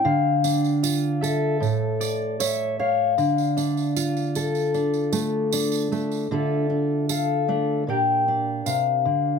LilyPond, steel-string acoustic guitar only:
\new Staff \with { instrumentName = "Steel-string acoustic guitar" } { \time 4/4 \key d \minor \tempo 4 = 77 << { r8 d'8 f'8 a'4. cis''8 cis''8 | r8 d'8 f'8 a'8 d'4 d'4 | <d' f' a'>8 d'8 a'8 d'8 <d' g' bes'>8 d'4. | } \\ { d2 a,2 | d2~ d8 a4 a8 | d4. a8 bes,4 c8 d8 | } >> }